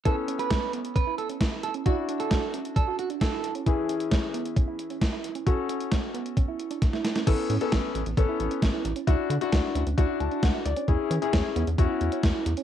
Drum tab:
CC |----------------|----------------|----------------|----------------|
HH |x-xxx-xxx-xxx-xx|x-xxx-xxx-xxx-xx|x-xxx-xxx-xxx-xx|x-xxx-xxx-xxx-xx|
SD |----o-------o---|----o-------o---|----o-------o---|----o-------oooo|
BD |o---o---o---o---|o---o---o---o---|o---o---o---o---|o---o---o---o---|

CC |x---------------|----------------|----------------|
HH |x-xxx-xxx-xxx-xx|x-xxx-xxx-xxx-xx|x-xxx-xxx-xxx-xx|
SD |----o-------o---|----o-------o---|----o-------o---|
BD |o---o---o---o---|o---o---o---o---|o---o---o---o---|